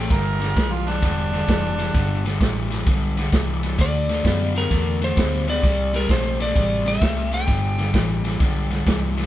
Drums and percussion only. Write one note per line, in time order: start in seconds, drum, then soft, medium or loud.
0.11 kick medium
0.11 snare soft
0.11 ride medium
0.41 snare soft
0.41 ride medium
0.57 kick medium
0.57 snare loud
0.57 ride medium
0.88 snare soft
0.88 ride medium
1.03 kick medium
1.03 snare soft
1.03 ride medium
1.33 snare soft
1.33 ride medium
1.48 kick medium
1.48 snare loud
1.48 ride medium
1.79 snare soft
1.79 ride medium
1.94 kick medium
1.94 snare soft
1.94 ride medium
2.26 snare soft
2.26 ride medium
2.41 kick medium
2.41 snare loud
2.41 ride medium
2.72 snare soft
2.72 ride medium
2.86 kick medium
2.86 snare soft
2.86 ride medium
3.17 snare soft
3.17 ride medium
3.32 kick medium
3.32 snare loud
3.32 ride medium
3.63 snare soft
3.63 ride medium
3.78 kick medium
3.78 snare soft
3.78 ride medium
4.09 snare soft
4.09 ride medium
4.25 kick medium
4.25 snare medium
4.25 ride medium
4.56 snare soft
4.56 ride medium
4.71 kick medium
4.71 snare soft
4.71 ride medium
5.02 snare soft
5.02 ride medium
5.17 kick medium
5.17 snare loud
5.17 ride medium
5.47 snare soft
5.47 ride medium
5.63 kick medium
5.63 snare soft
5.63 ride medium
5.94 snare soft
5.94 ride medium
6.09 kick medium
6.09 snare medium
6.09 ride medium
6.40 snare soft
6.40 ride medium
6.56 kick medium
6.56 snare soft
6.56 ride medium
6.87 snare soft
6.87 ride medium
7.02 kick medium
7.02 snare loud
7.02 ride medium
7.32 snare soft
7.32 ride medium
7.48 kick medium
7.48 snare soft
7.48 ride medium
7.79 snare soft
7.79 ride medium
7.94 kick medium
7.94 snare loud
7.94 ride medium
8.24 snare soft
8.24 ride medium
8.40 kick medium
8.40 snare soft
8.40 ride medium
8.71 snare soft
8.71 ride medium
8.87 kick medium
8.87 snare loud
8.87 ride medium
9.18 snare soft
9.18 ride medium